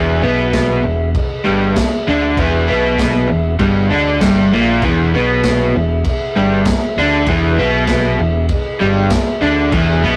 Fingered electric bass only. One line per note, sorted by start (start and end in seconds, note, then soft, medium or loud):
0.00 0.21 E1 loud
0.23 0.80 B1 loud
0.85 1.13 E1 medium
1.47 1.75 G1 loud
2.08 2.36 D2 loud
2.37 2.66 E1 loud
2.70 3.26 B1 loud
3.32 3.59 E1 medium
3.59 3.88 G1 medium
3.91 4.19 D2 medium
4.21 4.50 G1 medium
4.52 4.81 A#1 medium
4.82 5.11 E1 loud
5.14 5.71 B1 medium
5.75 6.03 E1 medium
6.36 6.65 G1 loud
6.97 7.26 D2 loud
7.27 7.56 E1 loud
7.58 8.16 B1 loud
8.19 8.48 E1 medium
8.81 9.10 G1 loud
9.42 9.71 D2 loud
9.72 10.01 E1 loud
10.03 10.16 B1 loud